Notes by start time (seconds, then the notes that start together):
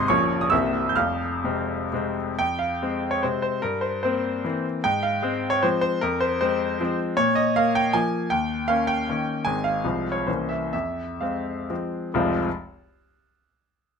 Already playing: G#2 C3 C4 D#5 D#6
0.00 C6
0.08 A#0 A#1 F3 A#3 C#4 C#5 C#6
0.41 D#6
0.50 C1 C2 C3 A#3 C4 E5 E6
0.89 G6
0.96 F1 F2 F5 F6
1.44 C3 G#3 C4
1.93 C3 G#3 C4
2.39 F2 G5
2.59 F5
2.82 G#3 C4
3.11 C#5
3.23 C3 G#3 C4 C5
3.42 C5
3.62 G2 A#4
3.81 C5
4.03 A#3 C4 C5
4.45 E3 A#3 C4
4.84 G#2 G5
5.03 F5
5.23 G#3 C4
5.50 C#5
5.62 F3 G#3 C4 C5
5.81 C5
6.01 F2 A#4
6.20 C5
6.41 G#3 C4 C5
6.80 F3 G#3 C4
7.17 A#2 C#5
7.35 D#5
7.56 A#3 F5
7.75 G5
7.93 F3 A#3 G#5
8.30 D#2 G5
8.68 A#3 C#4 F5
8.87 G5
9.09 D#3 A#3 C#4
9.45 G#1 D#3 G#3 C4 G#5
9.64 F5
9.84 C2 F3 G#3 C4
10.12 C#5
10.27 C2 E3 A#3 C#4 C5
10.49 E5
10.73 F2 E5
11.21 G#3 C4 F5
11.70 F3 G#3 C4
12.14 F1 C2 F3 G#3 C4 F4